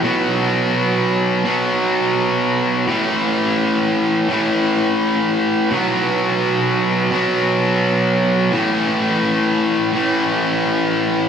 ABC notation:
X:1
M:4/4
L:1/8
Q:1/4=85
K:Bphr
V:1 name="Distorted electric guitar" clef=bass
[B,,F,B,]4 [B,,F,B,]4 | [A,,E,A,]4 [A,,E,A,]4 | [B,,F,B,]4 [B,,F,B,]4 | [A,,E,A,]4 [A,,E,A,]4 |]